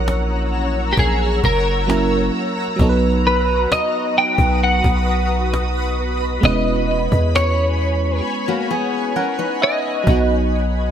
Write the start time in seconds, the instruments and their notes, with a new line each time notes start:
Already playing: 808-style bass A#1, fm electric piano F#3 A#3 C#4 E4 A#4, clean electric guitar C#5, ambient pad C#5 F#5 A#5 E6
0.08 cajon slap
0.52 cajon slap
0.93 clean electric guitar G4
0.97 808-style bass A#1, clean electric guitar G#4, cajon bass
1.44 808-style bass F#1, clean electric guitar A#4, cajon bass
1.87 fm electric piano F#3 A#3 C#4 E4 A#4, ambient pad F#4, cajon slap
2.34 cajon slap
2.45 cajon slap
2.56 cajon slap
2.68 cajon slap
2.76 808-style bass B1, fm electric piano F#3 B3, ambient pad B4 D#6, cajon bass
2.81 fm electric piano D#4 A4
2.89 fm electric piano B4
3.25 clean electric guitar B4, cajon slap
3.40 cajon slap
3.55 cajon slap
3.72 clean electric guitar D#5, cajon slap
4.16 clean electric guitar G5, cajon slap
4.38 808-style bass B1, cajon bass
4.62 clean electric guitar F#5, ambient pad B5, cajon slap
4.84 808-style bass B1, cajon bass
5.06 cajon slap
5.54 cajon slap
5.98 cajon slap
6.10 cajon slap
6.21 cajon slap
6.32 cajon slap
6.41 808-style bass E1, fm electric piano G#3 B3 C#4, ambient pad C#5 G#5, cajon bass
6.45 fm electric piano E4 B4, clean electric guitar D#5
6.89 cajon slap
7.12 808-style bass E2, cajon bass
7.36 clean electric guitar C#5, cajon slap
7.80 cajon slap
8.25 ambient pad F#6
8.48 steel-string acoustic guitar A#3 F#4
8.71 steel-string acoustic guitar B3 G#4, fm electric piano G#5
9.16 steel-string acoustic guitar C#4 A#4, fm electric piano F#5
9.39 steel-string acoustic guitar D#4 B4
9.62 clean electric guitar D#5, fm electric piano E5
10.04 808-style bass B1, fm electric piano F#3 B3, ambient pad B3 F#5 A#5 D#6, cajon bass
10.09 fm electric piano D#4 F#4
10.53 cajon slap